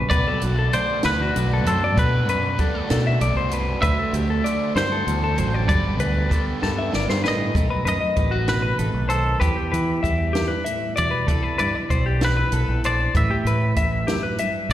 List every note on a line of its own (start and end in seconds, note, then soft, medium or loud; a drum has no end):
0.00 0.73 F#3 medium
0.00 0.11 G3 medium
0.09 0.24 B1 loud
0.09 1.95 B2 medium
0.09 0.72 B2 medium
0.09 1.96 F#3 medium
0.09 0.42 B3 medium
0.09 0.41 D4 medium
0.09 0.41 F#4 medium
0.09 0.26 B4 medium
0.09 0.73 D5 loud
0.09 0.39 D5 medium
0.09 kick medium
0.09 closed hi-hat medium
0.27 0.43 A4 medium
0.40 0.69 B1 medium
0.40 0.71 B3 medium
0.40 0.72 D4 medium
0.40 0.73 F#4 medium
0.40 0.58 F#4 medium
0.40 0.74 D5 medium
0.40 closed hi-hat soft
0.59 0.74 A4 medium
0.71 2.59 D3 medium
0.71 1.36 A3 medium
0.71 1.04 B3 medium
0.71 1.04 D4 medium
0.71 1.02 F#4 medium
0.71 1.02 C5 medium
0.71 1.04 D5 medium
0.71 1.03 D5 medium
0.71 closed hi-hat medium
1.03 1.30 D2 medium
1.03 1.33 B3 medium
1.03 1.66 D4 medium
1.03 1.35 D4 medium
1.03 1.35 F#4 medium
1.03 1.20 B4 medium
1.03 1.69 B4 medium
1.03 1.37 D5 medium
1.03 snare loud
1.03 closed hi-hat medium
1.22 1.52 F#4 medium
1.34 1.67 B1 medium
1.34 1.93 F#2 medium
1.34 2.01 A3 soft
1.34 1.66 B3 medium
1.34 1.66 D4 medium
1.34 1.64 F#4 medium
1.34 1.64 D5 medium
1.34 closed hi-hat medium
1.53 1.69 A4 medium
1.64 1.98 F#2 medium
1.64 1.95 B3 medium
1.64 1.96 D4 medium
1.64 2.91 D4 medium
1.64 1.96 F#4 medium
1.64 1.96 A4 medium
1.64 1.98 D5 medium
1.64 closed hi-hat medium
1.69 1.83 C5 medium
1.84 1.99 D5 medium
1.95 2.58 B2 medium
1.95 2.59 B2 medium
1.95 2.28 B2 medium
1.95 2.59 F#3 medium
1.95 2.27 B3 medium
1.95 2.27 D4 medium
1.95 2.25 F#4 medium
1.95 2.87 B4 medium
1.95 2.28 B4 medium
1.95 2.25 D5 loud
1.95 kick loud
1.95 closed hi-hat medium
2.25 2.54 F#2 medium
2.25 2.55 B3 medium
2.25 2.58 D4 medium
2.25 2.58 F#4 medium
2.25 2.59 D5 medium
2.25 closed hi-hat medium
2.29 2.60 B4 medium
2.57 4.44 D3 medium
2.57 2.75 G3 medium
2.57 2.89 B3 medium
2.57 2.89 D4 medium
2.57 2.87 F#4 medium
2.57 2.89 A4 medium
2.57 2.87 D5 medium
2.57 kick medium
2.57 closed hi-hat soft
2.75 3.20 A3 medium
2.88 3.17 B2 medium
2.88 3.18 B3 medium
2.88 3.19 D4 medium
2.88 3.53 D4 medium
2.88 3.20 F#4 medium
2.88 3.06 A4 medium
2.88 3.21 D5 medium
2.88 snare loud
2.88 closed hi-hat medium
3.07 3.21 E5 medium
3.19 3.34 B1 medium
3.19 3.79 F#2 medium
3.19 5.68 A3 medium
3.19 3.50 B3 medium
3.19 3.51 D4 medium
3.19 3.48 F#4 medium
3.19 3.37 D5 medium
3.19 3.48 D5 medium
3.19 closed hi-hat medium
3.35 3.75 C2 medium
3.35 3.53 C5 medium
3.49 3.81 B3 medium
3.49 3.82 D4 medium
3.49 3.80 F#4 medium
3.49 3.83 D5 medium
3.49 closed hi-hat medium
3.53 5.10 D4 medium
3.53 3.82 B4 medium
3.80 4.75 D2 medium
3.80 3.96 D2 medium
3.80 4.44 D3 medium
3.80 4.44 F#3 medium
3.80 4.14 A3 medium
3.80 4.13 D4 medium
3.80 4.12 F#4 medium
3.80 3.99 B4 medium
3.80 4.10 C5 medium
3.80 4.77 E5 loud
3.80 kick loud
3.80 closed hi-hat medium
3.99 4.15 A4 medium
4.11 4.40 D2 medium
4.11 4.42 A3 medium
4.11 4.43 D4 medium
4.11 4.44 F#4 medium
4.11 4.30 G4 medium
4.11 4.44 C5 medium
4.11 closed hi-hat medium
4.30 4.45 A4 medium
4.42 5.67 D3 medium
4.42 4.77 A3 medium
4.42 4.75 D4 medium
4.42 4.74 F#4 medium
4.42 4.73 C5 medium
4.42 4.76 D5 medium
4.42 closed hi-hat medium
4.75 5.07 D2 medium
4.75 5.02 G2 medium
4.75 5.05 A3 medium
4.75 5.04 D4 medium
4.75 5.06 F#4 medium
4.75 5.06 C5 medium
4.75 4.92 C5 medium
4.75 5.68 C5 medium
4.75 snare loud
4.75 closed hi-hat medium
4.92 5.23 A4 medium
5.05 5.41 D2 medium
5.05 5.37 E2 medium
5.05 5.38 A3 medium
5.05 5.36 D4 medium
5.05 5.35 F#4 medium
5.05 5.34 C5 medium
5.05 closed hi-hat medium
5.24 5.38 A4 medium
5.36 5.69 F#2 medium
5.36 5.67 A3 medium
5.36 5.67 D4 medium
5.36 5.66 F#4 medium
5.36 5.66 C5 medium
5.36 5.54 C5 medium
5.36 closed hi-hat medium
5.40 5.69 A1 medium
5.54 5.69 D5 medium
5.66 6.02 G1 medium
5.66 6.91 G2 medium
5.66 6.28 D3 medium
5.66 6.30 G3 medium
5.66 6.28 B3 medium
5.66 6.29 B3 medium
5.66 5.99 D4 medium
5.66 7.52 D4 medium
5.66 5.98 G4 medium
5.66 5.99 B4 medium
5.66 5.97 B4 medium
5.66 6.89 D5 medium
5.66 kick loud
5.66 closed hi-hat medium
5.98 6.27 D2 medium
5.98 6.29 D4 medium
5.98 6.30 G4 medium
5.98 6.31 B4 medium
5.98 6.32 B4 medium
5.98 closed hi-hat soft
6.29 7.55 D3 medium
6.29 6.89 B3 medium
6.29 7.51 B3 medium
6.29 6.62 D4 medium
6.29 6.60 G4 medium
6.29 6.62 A4 medium
6.29 6.59 B4 medium
6.29 kick medium
6.29 closed hi-hat medium
6.60 6.89 G2 medium
6.60 6.90 D4 medium
6.60 6.91 G4 medium
6.60 6.78 A4 medium
6.60 6.92 B4 medium
6.60 snare medium
6.78 6.94 E5 medium
6.90 7.24 G2 medium
6.90 7.52 B3 medium
6.90 7.24 D4 medium
6.90 7.22 G4 medium
6.90 7.21 B4 medium
6.90 snare medium
6.95 7.07 G1 medium
6.95 7.09 D5 medium
7.09 7.48 G2 medium
7.09 7.23 C5 medium
7.09 snare medium
7.22 7.54 A2 medium
7.22 7.54 D4 medium
7.22 7.53 G4 medium
7.22 7.52 B4 medium
7.22 7.55 B4 medium
7.22 snare medium
7.28 7.87 D#5 medium
7.54 7.68 B1 medium
7.54 7.86 B2 medium
7.54 7.85 D#3 soft
7.54 8.17 A3 soft
7.54 9.39 C4 medium
7.54 9.39 D#4 medium
7.54 7.70 A4 medium
7.54 kick loud
7.54 closed hi-hat medium
7.70 7.84 B4 medium
7.85 7.99 F#2 medium
7.85 9.09 D#3 medium
7.85 8.00 B4 medium
7.85 8.48 D#5 medium
7.85 closed hi-hat medium
8.01 8.16 D#5 medium
8.16 8.70 A1 medium
8.16 8.32 G3 medium
8.16 8.33 B4 medium
8.16 kick medium
8.16 closed hi-hat soft
8.31 9.41 A3 soft
8.31 8.63 F#4 medium
8.48 8.79 B2 medium
8.48 9.07 B4 medium
8.48 snare medium
8.48 closed hi-hat medium
8.62 8.78 B4 medium
8.78 8.92 A1 medium
8.78 9.11 C3 medium
8.78 9.08 A4 medium
8.78 closed hi-hat medium
8.94 9.34 B1 medium
9.09 9.42 D#3 medium
9.09 9.40 A4 medium
9.09 9.39 C5 medium
9.09 closed hi-hat medium
9.40 11.24 E2 medium
9.40 9.55 E2 medium
9.40 10.62 G4 medium
9.40 9.56 B4 medium
9.40 kick medium
9.40 closed hi-hat medium
9.57 9.73 G4 medium
9.72 9.99 E3 medium
9.72 11.28 E3 medium
9.72 10.02 B4 medium
9.72 closed hi-hat medium
10.03 10.30 E2 medium
10.03 11.28 G3 medium
10.03 10.34 E5 medium
10.03 kick medium
10.03 closed hi-hat medium
10.33 10.65 G2 medium
10.33 10.50 G4 medium
10.33 snare loud
10.33 closed hi-hat medium
10.48 10.65 B4 medium
10.65 10.97 A2 medium
10.65 10.95 E5 medium
10.65 closed hi-hat medium
10.96 11.11 E2 medium
10.96 11.27 B2 medium
10.96 11.10 D5 medium
10.96 11.59 D5 medium
10.96 closed hi-hat medium
11.11 11.27 B4 medium
11.27 11.42 C2 medium
11.27 11.59 C3 medium
11.27 11.59 E3 medium
11.27 11.90 B3 medium
11.27 12.84 D4 medium
11.27 13.12 E4 medium
11.27 11.43 A4 medium
11.27 kick loud
11.27 closed hi-hat medium
11.43 11.57 B4 medium
11.58 11.73 G2 medium
11.58 12.22 E3 medium
11.58 11.75 B4 medium
11.58 12.24 D5 medium
11.58 closed hi-hat soft
11.75 11.90 D5 medium
11.90 12.43 B1 medium
11.90 12.53 B3 medium
11.90 12.06 C5 medium
11.90 kick medium
11.90 closed hi-hat medium
12.06 12.37 G4 medium
12.21 13.11 E3 medium
12.21 12.81 B4 medium
12.21 snare loud
12.21 closed hi-hat medium
12.37 12.53 B4 medium
12.52 12.66 B1 medium
12.52 13.19 B3 soft
12.52 12.84 A4 medium
12.52 closed hi-hat medium
12.68 13.07 A#1 medium
12.84 13.12 D4 medium
12.84 13.15 C5 medium
12.84 13.16 D5 medium
12.84 closed hi-hat medium
13.15 13.28 A1 medium
13.15 14.39 A2 medium
13.15 13.30 B4 medium
13.15 14.36 E5 loud
13.15 kick loud
13.15 closed hi-hat medium
13.31 13.46 G4 medium
13.45 13.71 A2 medium
13.45 14.73 E3 medium
13.45 13.77 B4 medium
13.45 closed hi-hat soft
13.76 14.03 A1 medium
13.76 14.08 E5 medium
13.76 kick medium
13.76 closed hi-hat medium
14.07 14.39 F#2 medium
14.07 14.23 G4 medium
14.07 snare loud
14.07 closed hi-hat medium
14.23 14.39 B4 medium
14.38 14.71 G2 medium
14.38 14.71 E5 medium
14.38 closed hi-hat medium
14.69 14.73 A#1 medium